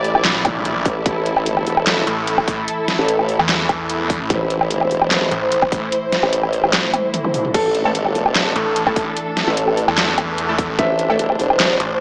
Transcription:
Already playing: A1 A2 E3 E4 D5
0.04 open hi-hat
0.15 A#1, low woodblock
0.25 A#1, snare, clap, closed hi-hat
0.45 kick, closed hi-hat, zap, low woodblock
0.65 closed hi-hat
0.85 A1, kick, open hi-hat
1.06 A1 A4, kick, closed hi-hat
1.26 closed hi-hat
1.37 low woodblock
1.46 G#1, closed hi-hat
1.57 low woodblock
1.67 E1, open hi-hat
1.77 low woodblock
1.87 snare, clap, closed hi-hat
2.07 A1, closed hi-hat
2.27 A1, closed hi-hat
2.38 kick, low woodblock
2.48 kick, open hi-hat
2.68 closed hi-hat
2.88 snare, closed hi-hat
2.99 A1
3.08 closed hi-hat
3.19 low woodblock
3.29 open hi-hat
3.39 E2, low woodblock
3.49 snare, clap, closed hi-hat
3.69 kick, closed hi-hat, low woodblock
3.90 closed hi-hat
4.10 kick, open hi-hat
4.21 A1
4.30 A1 C5, kick, closed hi-hat
4.50 closed hi-hat
4.61 low woodblock
4.71 closed hi-hat
4.81 low woodblock
4.91 E1, open hi-hat
5.02 low woodblock
5.11 snare, clap, closed hi-hat
5.31 A1, closed hi-hat
5.52 A1, closed hi-hat
5.62 kick, low woodblock
5.72 kick, open hi-hat
5.92 closed hi-hat
6.12 snare, closed hi-hat
6.23 A1, low woodblock
6.33 closed hi-hat
6.43 low woodblock
6.53 open hi-hat
6.64 A1, low woodblock
6.73 snare, clap, closed hi-hat
6.94 closed hi-hat, high tom, low woodblock
7.14 closed hi-hat, mid tom
7.25 mid tom, zap
7.34 mid tom, open hi-hat
7.45 mid tom
7.54 A1 D4 A4, kick, closed hi-hat, crash
7.75 closed hi-hat
7.85 A3 E4 A4, low woodblock
7.95 G#1, closed hi-hat
8.06 low woodblock
8.15 E1, open hi-hat
8.26 low woodblock
8.36 snare, clap, closed hi-hat
8.56 A1, closed hi-hat
8.76 A1, closed hi-hat
8.87 A3 E4 A4, kick, low woodblock
8.96 kick, open hi-hat
9.17 closed hi-hat
9.37 snare, closed hi-hat
9.47 A1 A3 E4 A4
9.57 closed hi-hat
9.68 low woodblock
9.77 open hi-hat
9.88 E2, low woodblock
9.98 snare, clap, closed hi-hat
10.18 kick, closed hi-hat, low woodblock
10.38 closed hi-hat
10.49 A3 E4 A4
10.58 kick, open hi-hat
10.69 A1
10.79 A1 C5 E5, kick, closed hi-hat
10.99 closed hi-hat
11.10 A3 E4 A4, low woodblock
11.19 closed hi-hat
11.30 low woodblock
11.40 E1, open hi-hat
11.50 low woodblock
11.60 snare, clap, closed hi-hat
11.80 A1, closed hi-hat

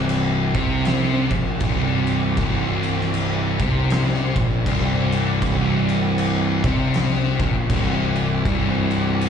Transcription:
Already playing: C1 C2
0.09 crash
0.54 C2 C3, kick, crash
0.85 snare, crash
1.30 A#1 A#2, kick, crash
1.60 C1 C2, kick, crash
2.07 crash
2.37 C1 C2, kick, crash
2.83 crash
3.01 snare
3.14 crash
3.59 C2 C3, kick, crash
3.90 snare, crash
4.35 A#1 A#2, kick, crash
4.66 C1 C2, kick, crash
5.12 crash
5.42 C1 C2, kick, crash
5.89 crash
6.18 crash
6.64 C2 C3, kick, crash
6.94 snare, crash
7.39 A#1 A#2, kick, crash
7.70 C1 C2, kick, crash
8.16 crash
8.45 C1 C2, kick, crash
8.91 crash
9.21 crash

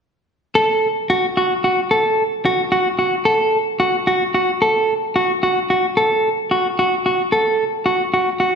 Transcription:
0.55 A4
1.10 F#4
1.37 F#4
1.64 F#4
1.91 A4
2.45 F#4
2.72 F#4
2.99 F#4
3.25 A4
3.80 F#4
4.07 F#4
4.34 F#4
4.62 A4
5.16 F#4
5.43 F#4
5.70 F#4
5.97 A4
6.51 F#4
6.79 F#4
7.06 F#4
7.32 A4
7.86 F#4
8.14 F#4
8.40 F#4

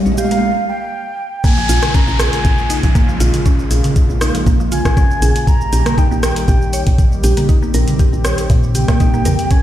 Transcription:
Already playing: D#3 G3 A#3 G4
0.06 A#1, mid tom, cabasa
0.12 mid tom
0.18 G4 F5, mid tom, cabasa
0.24 mid tom
0.31 A#3, closed hi-hat, mid tom, cabasa
0.37 mid tom
0.69 G5
1.44 C#3 G#3 A#3 F4 G#5, kick, closed hi-hat, downlifter, cabasa
1.57 F3, cabasa
1.69 A#1 F4, open hi-hat, cabasa
1.83 cross-stick, closed hi-hat, mid tom, cabasa
1.94 C#4 A#5, kick, closed hi-hat, cabasa
2.08 A#1, cabasa
2.19 G#4 G#5, cross-stick, open hi-hat, cabasa
2.33 closed hi-hat, cabasa
2.45 A#1, kick, closed hi-hat, cabasa
2.58 cabasa
2.70 D#4, open hi-hat, cabasa
2.83 A#1 F3, kick, closed hi-hat, cabasa
2.95 A#3, kick, closed hi-hat, cabasa
3.09 F3, cabasa
3.20 A#1 F4, open hi-hat, cabasa
3.34 closed hi-hat, mid tom, cabasa
3.46 C#4, kick, closed hi-hat, cabasa
3.59 cabasa
3.71 A#1 G#4, open hi-hat, cabasa
3.84 closed hi-hat, mid tom, cabasa
3.96 kick, closed hi-hat, cabasa
4.10 A#1, cabasa
4.21 D#4, cross-stick, open hi-hat, cabasa
4.35 F3, closed hi-hat, cabasa
4.46 A#1 A#3, kick, closed hi-hat, cabasa
4.60 F3, cabasa
4.72 F4 G#5, open hi-hat, mid tom, cabasa
4.85 A#1, kick, cross-stick, closed hi-hat, cabasa
4.97 C#4, kick, closed hi-hat, cabasa
5.11 cabasa
5.22 A#1 G#4, open hi-hat, cabasa
5.36 closed hi-hat, cabasa
5.47 D#3 G3 G4 A#5, kick, closed hi-hat, cabasa
5.61 cabasa
5.73 A#1 G4, open hi-hat, cabasa
5.86 A#3, cross-stick, closed hi-hat, mid tom, cabasa
5.98 D#4 G5, kick, closed hi-hat, cabasa
6.11 A#1 A#3, cabasa
6.23 A#4 G5, cross-stick, open hi-hat, cabasa
6.36 closed hi-hat, cabasa
6.48 A#1 G4, kick, closed hi-hat, cabasa
6.62 cabasa
6.73 C#5, open hi-hat, cabasa
6.87 A#1, kick, closed hi-hat, cabasa
6.98 kick, closed hi-hat, cabasa
7.12 cabasa
7.24 A#1 G4, open hi-hat, cabasa
7.37 A#3, closed hi-hat, mid tom, cabasa
7.49 C4 D#4, kick, closed hi-hat, cabasa
7.62 A#3, cabasa
7.74 A#1 A#4, open hi-hat, cabasa
7.88 closed hi-hat, mid tom, cabasa
7.99 G4, kick, closed hi-hat, cabasa
8.13 A#1, cabasa
8.25 C#5, cross-stick, open hi-hat, cabasa
8.38 closed hi-hat, cabasa
8.50 A#2, kick, closed hi-hat, cabasa
8.63 cabasa
8.75 G4 G5, open hi-hat, mid tom, cabasa
8.88 A#2 A#3, kick, cross-stick, closed hi-hat, cabasa
9.00 D#4, kick, closed hi-hat, cabasa
9.14 A#3, cabasa
9.25 F2 A#4, open hi-hat, mid tom, cabasa
9.39 closed hi-hat, cabasa
9.51 C#3 G#3 A#3 C#4 F4 G#5, kick, closed hi-hat, cabasa

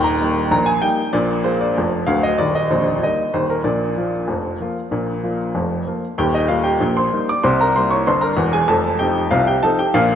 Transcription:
Already playing: D#1 D#2
0.04 A#5
0.20 G3 A#3 D#4
0.51 A#1 A#2 A#5
0.66 G#5
0.82 G3 A#3 D#4 G5
1.13 A#1 A#2 D5
1.44 G#3 A#3 F4 C5
1.61 D5
1.78 F1 F2
2.07 D1 D2 F5
2.23 D#5
2.38 D#1 D#2 D5
2.55 D#5
2.70 A#0 A#1 C5
2.87 D5
3.03 G3 A#3 D#4 D#5
3.34 D#1 D#2 C5
3.50 A#4
3.64 A#1 A#2 D5
3.97 F3 A#3 F4
4.28 F1 F2
4.60 F3 A#3 F4
4.91 A#1 A#2
5.23 F3 A#3 F4
5.55 F1 F2
5.87 F3 A#3 F4
6.18 D#1 D#2 G4 G5
6.34 D#4 D#5
6.48 G3 A#3 D#4 F4 F5
6.64 G4 G5
6.80 A#1 A#2
6.97 C5 C6
7.13 G3 A#3 D#4
7.29 D5 D6
7.43 C2 C3 C5 C6
7.61 A#4 A#5
7.76 G3 A#3 E4 C5 C6
7.91 C#5 C#6
8.07 G1 G2 C5 C6
8.21 A#4 A#5
8.37 E1 E2
8.53 G#4 G#5
8.68 F1 F2 A4 A5
8.99 F3 C4 D#4 G4 G5
9.31 C2 C3 F4 F5
9.47 G4 G5
9.63 F3 C4 D#4 A4 A5
9.79 G4 G5
9.94 A#1 A#2 F4 F5

